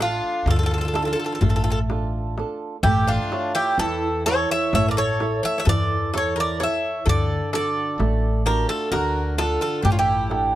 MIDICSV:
0, 0, Header, 1, 6, 480
1, 0, Start_track
1, 0, Tempo, 944882
1, 1445, Time_signature, 9, 3, 24, 8
1, 2878, Tempo, 925926
1, 5411, End_track
2, 0, Start_track
2, 0, Title_t, "Bouzouki"
2, 0, Program_c, 0, 25
2, 10, Note_on_c, 0, 65, 84
2, 253, Note_off_c, 0, 65, 0
2, 257, Note_on_c, 0, 69, 76
2, 285, Note_off_c, 0, 69, 0
2, 299, Note_on_c, 0, 69, 54
2, 326, Note_off_c, 0, 69, 0
2, 336, Note_on_c, 0, 69, 64
2, 364, Note_off_c, 0, 69, 0
2, 374, Note_on_c, 0, 69, 50
2, 403, Note_off_c, 0, 69, 0
2, 412, Note_on_c, 0, 69, 57
2, 442, Note_off_c, 0, 69, 0
2, 447, Note_on_c, 0, 69, 45
2, 478, Note_off_c, 0, 69, 0
2, 484, Note_on_c, 0, 69, 52
2, 516, Note_off_c, 0, 69, 0
2, 535, Note_on_c, 0, 69, 46
2, 562, Note_off_c, 0, 69, 0
2, 573, Note_on_c, 0, 69, 58
2, 601, Note_off_c, 0, 69, 0
2, 607, Note_on_c, 0, 69, 44
2, 633, Note_off_c, 0, 69, 0
2, 639, Note_on_c, 0, 69, 47
2, 672, Note_off_c, 0, 69, 0
2, 685, Note_on_c, 0, 69, 50
2, 709, Note_off_c, 0, 69, 0
2, 715, Note_on_c, 0, 69, 52
2, 750, Note_off_c, 0, 69, 0
2, 761, Note_on_c, 0, 69, 50
2, 786, Note_off_c, 0, 69, 0
2, 792, Note_on_c, 0, 69, 60
2, 826, Note_off_c, 0, 69, 0
2, 832, Note_on_c, 0, 69, 59
2, 867, Note_off_c, 0, 69, 0
2, 872, Note_on_c, 0, 69, 60
2, 907, Note_off_c, 0, 69, 0
2, 1439, Note_on_c, 0, 67, 91
2, 1566, Note_off_c, 0, 67, 0
2, 1566, Note_on_c, 0, 65, 75
2, 1802, Note_on_c, 0, 67, 82
2, 1813, Note_off_c, 0, 65, 0
2, 1915, Note_off_c, 0, 67, 0
2, 1928, Note_on_c, 0, 69, 94
2, 2149, Note_off_c, 0, 69, 0
2, 2164, Note_on_c, 0, 73, 100
2, 2287, Note_off_c, 0, 73, 0
2, 2293, Note_on_c, 0, 76, 104
2, 2399, Note_off_c, 0, 76, 0
2, 2412, Note_on_c, 0, 76, 106
2, 2485, Note_off_c, 0, 76, 0
2, 2494, Note_on_c, 0, 74, 67
2, 2526, Note_off_c, 0, 74, 0
2, 2531, Note_on_c, 0, 73, 98
2, 2767, Note_off_c, 0, 73, 0
2, 2769, Note_on_c, 0, 76, 91
2, 2837, Note_off_c, 0, 76, 0
2, 2843, Note_on_c, 0, 76, 72
2, 2879, Note_off_c, 0, 76, 0
2, 2891, Note_on_c, 0, 74, 102
2, 3111, Note_off_c, 0, 74, 0
2, 3142, Note_on_c, 0, 73, 83
2, 3256, Note_off_c, 0, 73, 0
2, 3260, Note_on_c, 0, 74, 90
2, 3375, Note_off_c, 0, 74, 0
2, 3380, Note_on_c, 0, 76, 83
2, 3616, Note_off_c, 0, 76, 0
2, 3618, Note_on_c, 0, 74, 94
2, 3835, Note_off_c, 0, 74, 0
2, 3856, Note_on_c, 0, 74, 96
2, 4309, Note_off_c, 0, 74, 0
2, 4329, Note_on_c, 0, 70, 87
2, 4438, Note_off_c, 0, 70, 0
2, 4446, Note_on_c, 0, 69, 78
2, 4556, Note_off_c, 0, 69, 0
2, 4563, Note_on_c, 0, 70, 79
2, 4786, Note_off_c, 0, 70, 0
2, 4806, Note_on_c, 0, 69, 82
2, 4922, Note_off_c, 0, 69, 0
2, 4928, Note_on_c, 0, 69, 69
2, 5046, Note_on_c, 0, 67, 69
2, 5047, Note_off_c, 0, 69, 0
2, 5077, Note_off_c, 0, 67, 0
2, 5083, Note_on_c, 0, 65, 60
2, 5116, Note_off_c, 0, 65, 0
2, 5118, Note_on_c, 0, 67, 76
2, 5411, Note_off_c, 0, 67, 0
2, 5411, End_track
3, 0, Start_track
3, 0, Title_t, "Bouzouki"
3, 0, Program_c, 1, 25
3, 3, Note_on_c, 1, 62, 66
3, 226, Note_off_c, 1, 62, 0
3, 240, Note_on_c, 1, 65, 59
3, 277, Note_off_c, 1, 65, 0
3, 285, Note_on_c, 1, 65, 45
3, 315, Note_off_c, 1, 65, 0
3, 321, Note_on_c, 1, 65, 54
3, 354, Note_off_c, 1, 65, 0
3, 360, Note_on_c, 1, 65, 40
3, 390, Note_off_c, 1, 65, 0
3, 396, Note_on_c, 1, 65, 43
3, 425, Note_off_c, 1, 65, 0
3, 431, Note_on_c, 1, 65, 41
3, 470, Note_off_c, 1, 65, 0
3, 476, Note_on_c, 1, 65, 43
3, 513, Note_off_c, 1, 65, 0
3, 521, Note_on_c, 1, 65, 45
3, 539, Note_off_c, 1, 65, 0
3, 545, Note_on_c, 1, 65, 48
3, 580, Note_off_c, 1, 65, 0
3, 586, Note_on_c, 1, 65, 39
3, 626, Note_off_c, 1, 65, 0
3, 632, Note_on_c, 1, 65, 46
3, 666, Note_off_c, 1, 65, 0
3, 672, Note_on_c, 1, 65, 39
3, 709, Note_off_c, 1, 65, 0
3, 721, Note_on_c, 1, 65, 45
3, 752, Note_off_c, 1, 65, 0
3, 758, Note_on_c, 1, 65, 39
3, 788, Note_off_c, 1, 65, 0
3, 794, Note_on_c, 1, 65, 45
3, 826, Note_off_c, 1, 65, 0
3, 832, Note_on_c, 1, 65, 45
3, 859, Note_off_c, 1, 65, 0
3, 865, Note_on_c, 1, 65, 49
3, 903, Note_off_c, 1, 65, 0
3, 1439, Note_on_c, 1, 64, 74
3, 1553, Note_off_c, 1, 64, 0
3, 1562, Note_on_c, 1, 62, 69
3, 1786, Note_off_c, 1, 62, 0
3, 1805, Note_on_c, 1, 64, 80
3, 1916, Note_off_c, 1, 64, 0
3, 1926, Note_on_c, 1, 64, 68
3, 2148, Note_off_c, 1, 64, 0
3, 2173, Note_on_c, 1, 69, 81
3, 2280, Note_off_c, 1, 69, 0
3, 2293, Note_on_c, 1, 73, 83
3, 2399, Note_off_c, 1, 73, 0
3, 2415, Note_on_c, 1, 73, 78
3, 2479, Note_off_c, 1, 73, 0
3, 2481, Note_on_c, 1, 70, 61
3, 2517, Note_off_c, 1, 70, 0
3, 2525, Note_on_c, 1, 69, 76
3, 2745, Note_off_c, 1, 69, 0
3, 2759, Note_on_c, 1, 73, 72
3, 2828, Note_off_c, 1, 73, 0
3, 2835, Note_on_c, 1, 73, 59
3, 2870, Note_off_c, 1, 73, 0
3, 2872, Note_on_c, 1, 69, 77
3, 3100, Note_off_c, 1, 69, 0
3, 3122, Note_on_c, 1, 69, 73
3, 3234, Note_off_c, 1, 69, 0
3, 3237, Note_on_c, 1, 70, 73
3, 3352, Note_off_c, 1, 70, 0
3, 3362, Note_on_c, 1, 73, 77
3, 3587, Note_off_c, 1, 73, 0
3, 3599, Note_on_c, 1, 69, 78
3, 3825, Note_off_c, 1, 69, 0
3, 3846, Note_on_c, 1, 69, 81
3, 4304, Note_off_c, 1, 69, 0
3, 4326, Note_on_c, 1, 67, 75
3, 4436, Note_off_c, 1, 67, 0
3, 4450, Note_on_c, 1, 65, 64
3, 4558, Note_off_c, 1, 65, 0
3, 4566, Note_on_c, 1, 66, 74
3, 4787, Note_off_c, 1, 66, 0
3, 4805, Note_on_c, 1, 65, 72
3, 4915, Note_off_c, 1, 65, 0
3, 4924, Note_on_c, 1, 65, 61
3, 5032, Note_off_c, 1, 65, 0
3, 5034, Note_on_c, 1, 62, 54
3, 5071, Note_off_c, 1, 62, 0
3, 5076, Note_on_c, 1, 61, 44
3, 5110, Note_off_c, 1, 61, 0
3, 5120, Note_on_c, 1, 64, 62
3, 5411, Note_off_c, 1, 64, 0
3, 5411, End_track
4, 0, Start_track
4, 0, Title_t, "Nylon-string guitar"
4, 0, Program_c, 2, 24
4, 0, Note_on_c, 2, 57, 69
4, 0, Note_on_c, 2, 62, 46
4, 0, Note_on_c, 2, 65, 42
4, 0, Note_on_c, 2, 69, 53
4, 219, Note_off_c, 2, 57, 0
4, 235, Note_on_c, 2, 50, 62
4, 382, Note_off_c, 2, 62, 0
4, 383, Note_off_c, 2, 65, 0
4, 384, Note_off_c, 2, 69, 0
4, 473, Note_on_c, 2, 62, 47
4, 476, Note_on_c, 2, 69, 60
4, 477, Note_on_c, 2, 65, 45
4, 706, Note_off_c, 2, 50, 0
4, 719, Note_on_c, 2, 57, 61
4, 863, Note_off_c, 2, 62, 0
4, 864, Note_off_c, 2, 65, 0
4, 865, Note_off_c, 2, 69, 0
4, 965, Note_on_c, 2, 62, 44
4, 967, Note_on_c, 2, 65, 41
4, 971, Note_on_c, 2, 69, 45
4, 1188, Note_off_c, 2, 57, 0
4, 1203, Note_off_c, 2, 62, 0
4, 1206, Note_off_c, 2, 65, 0
4, 1209, Note_on_c, 2, 62, 46
4, 1210, Note_off_c, 2, 69, 0
4, 1212, Note_on_c, 2, 65, 39
4, 1216, Note_on_c, 2, 69, 52
4, 1400, Note_off_c, 2, 62, 0
4, 1402, Note_off_c, 2, 65, 0
4, 1404, Note_off_c, 2, 69, 0
4, 1451, Note_on_c, 2, 57, 70
4, 1683, Note_on_c, 2, 64, 47
4, 1686, Note_on_c, 2, 69, 44
4, 1690, Note_on_c, 2, 73, 53
4, 1913, Note_off_c, 2, 57, 0
4, 1926, Note_on_c, 2, 52, 66
4, 2067, Note_off_c, 2, 64, 0
4, 2069, Note_off_c, 2, 69, 0
4, 2071, Note_off_c, 2, 73, 0
4, 2164, Note_on_c, 2, 64, 54
4, 2167, Note_on_c, 2, 69, 45
4, 2170, Note_on_c, 2, 73, 60
4, 2389, Note_off_c, 2, 52, 0
4, 2409, Note_on_c, 2, 57, 65
4, 2546, Note_off_c, 2, 64, 0
4, 2548, Note_off_c, 2, 69, 0
4, 2548, Note_off_c, 2, 73, 0
4, 2644, Note_on_c, 2, 64, 50
4, 2648, Note_on_c, 2, 69, 47
4, 2650, Note_on_c, 2, 76, 57
4, 2868, Note_off_c, 2, 57, 0
4, 2886, Note_on_c, 2, 52, 58
4, 3026, Note_off_c, 2, 64, 0
4, 3028, Note_off_c, 2, 69, 0
4, 3029, Note_off_c, 2, 76, 0
4, 3125, Note_on_c, 2, 64, 49
4, 3127, Note_on_c, 2, 69, 40
4, 3129, Note_on_c, 2, 73, 49
4, 3352, Note_off_c, 2, 52, 0
4, 3361, Note_off_c, 2, 64, 0
4, 3361, Note_off_c, 2, 69, 0
4, 3365, Note_off_c, 2, 73, 0
4, 3367, Note_on_c, 2, 64, 42
4, 3368, Note_on_c, 2, 69, 44
4, 3371, Note_on_c, 2, 73, 53
4, 3558, Note_off_c, 2, 64, 0
4, 3558, Note_off_c, 2, 69, 0
4, 3561, Note_off_c, 2, 73, 0
4, 3607, Note_on_c, 2, 50, 64
4, 3849, Note_on_c, 2, 62, 48
4, 3851, Note_on_c, 2, 66, 40
4, 3853, Note_on_c, 2, 69, 55
4, 4072, Note_off_c, 2, 50, 0
4, 4089, Note_on_c, 2, 57, 64
4, 4231, Note_off_c, 2, 62, 0
4, 4233, Note_off_c, 2, 66, 0
4, 4233, Note_off_c, 2, 69, 0
4, 4327, Note_on_c, 2, 62, 49
4, 4332, Note_on_c, 2, 66, 46
4, 4551, Note_off_c, 2, 57, 0
4, 4570, Note_on_c, 2, 50, 62
4, 4709, Note_off_c, 2, 62, 0
4, 4710, Note_off_c, 2, 66, 0
4, 4802, Note_on_c, 2, 62, 47
4, 4805, Note_on_c, 2, 78, 43
4, 4810, Note_on_c, 2, 69, 55
4, 5030, Note_off_c, 2, 50, 0
4, 5042, Note_on_c, 2, 57, 60
4, 5183, Note_off_c, 2, 62, 0
4, 5185, Note_off_c, 2, 78, 0
4, 5188, Note_off_c, 2, 69, 0
4, 5278, Note_on_c, 2, 62, 47
4, 5281, Note_on_c, 2, 69, 43
4, 5282, Note_on_c, 2, 78, 39
4, 5411, Note_off_c, 2, 57, 0
4, 5411, Note_off_c, 2, 62, 0
4, 5411, Note_off_c, 2, 69, 0
4, 5411, Note_off_c, 2, 78, 0
4, 5411, End_track
5, 0, Start_track
5, 0, Title_t, "Upright bass"
5, 0, Program_c, 3, 32
5, 0, Note_on_c, 3, 33, 89
5, 91, Note_off_c, 3, 33, 0
5, 233, Note_on_c, 3, 38, 102
5, 574, Note_off_c, 3, 38, 0
5, 717, Note_on_c, 3, 33, 88
5, 1225, Note_off_c, 3, 33, 0
5, 1437, Note_on_c, 3, 33, 110
5, 1608, Note_off_c, 3, 33, 0
5, 1919, Note_on_c, 3, 40, 88
5, 2256, Note_off_c, 3, 40, 0
5, 2403, Note_on_c, 3, 33, 98
5, 2736, Note_off_c, 3, 33, 0
5, 2878, Note_on_c, 3, 40, 91
5, 3386, Note_off_c, 3, 40, 0
5, 3604, Note_on_c, 3, 38, 101
5, 3772, Note_off_c, 3, 38, 0
5, 4085, Note_on_c, 3, 33, 88
5, 4420, Note_off_c, 3, 33, 0
5, 4563, Note_on_c, 3, 38, 94
5, 4897, Note_off_c, 3, 38, 0
5, 5039, Note_on_c, 3, 33, 89
5, 5411, Note_off_c, 3, 33, 0
5, 5411, End_track
6, 0, Start_track
6, 0, Title_t, "Darbuka"
6, 1, Note_on_c, 9, 63, 62
6, 52, Note_off_c, 9, 63, 0
6, 241, Note_on_c, 9, 63, 65
6, 241, Note_on_c, 9, 64, 58
6, 292, Note_off_c, 9, 63, 0
6, 292, Note_off_c, 9, 64, 0
6, 484, Note_on_c, 9, 63, 67
6, 535, Note_off_c, 9, 63, 0
6, 722, Note_on_c, 9, 64, 82
6, 773, Note_off_c, 9, 64, 0
6, 964, Note_on_c, 9, 63, 66
6, 1015, Note_off_c, 9, 63, 0
6, 1207, Note_on_c, 9, 63, 55
6, 1258, Note_off_c, 9, 63, 0
6, 1446, Note_on_c, 9, 64, 70
6, 1497, Note_off_c, 9, 64, 0
6, 1687, Note_on_c, 9, 63, 63
6, 1737, Note_off_c, 9, 63, 0
6, 1925, Note_on_c, 9, 63, 61
6, 1976, Note_off_c, 9, 63, 0
6, 2166, Note_on_c, 9, 63, 60
6, 2217, Note_off_c, 9, 63, 0
6, 2405, Note_on_c, 9, 63, 58
6, 2405, Note_on_c, 9, 64, 55
6, 2456, Note_off_c, 9, 63, 0
6, 2456, Note_off_c, 9, 64, 0
6, 2643, Note_on_c, 9, 63, 63
6, 2694, Note_off_c, 9, 63, 0
6, 2881, Note_on_c, 9, 64, 86
6, 2932, Note_off_c, 9, 64, 0
6, 3123, Note_on_c, 9, 63, 71
6, 3175, Note_off_c, 9, 63, 0
6, 3363, Note_on_c, 9, 63, 65
6, 3415, Note_off_c, 9, 63, 0
6, 3606, Note_on_c, 9, 64, 78
6, 3658, Note_off_c, 9, 64, 0
6, 3727, Note_on_c, 9, 63, 27
6, 3779, Note_off_c, 9, 63, 0
6, 3845, Note_on_c, 9, 63, 69
6, 3897, Note_off_c, 9, 63, 0
6, 3969, Note_on_c, 9, 63, 24
6, 4021, Note_off_c, 9, 63, 0
6, 4089, Note_on_c, 9, 63, 67
6, 4141, Note_off_c, 9, 63, 0
6, 4452, Note_on_c, 9, 63, 26
6, 4504, Note_off_c, 9, 63, 0
6, 4570, Note_on_c, 9, 63, 74
6, 4622, Note_off_c, 9, 63, 0
6, 4810, Note_on_c, 9, 63, 61
6, 4862, Note_off_c, 9, 63, 0
6, 4931, Note_on_c, 9, 63, 24
6, 4983, Note_off_c, 9, 63, 0
6, 5048, Note_on_c, 9, 64, 84
6, 5100, Note_off_c, 9, 64, 0
6, 5287, Note_on_c, 9, 63, 66
6, 5339, Note_off_c, 9, 63, 0
6, 5411, End_track
0, 0, End_of_file